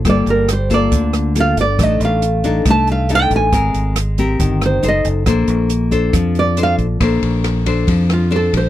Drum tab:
RD |--------|--------|--------|--------|
HH |xxxxxxxx|xxxxxxxx|xxxxxxxx|xxxxxxxx|
SD |r-r--r--|r---r---|r-r--r--|r---r---|
BD |o--oo--o|o--oo--o|o--oo--o|o--oo--o|

RD |xxxxxxxx|
HH |--------|
SD |r-r--r--|
BD |o--oo--o|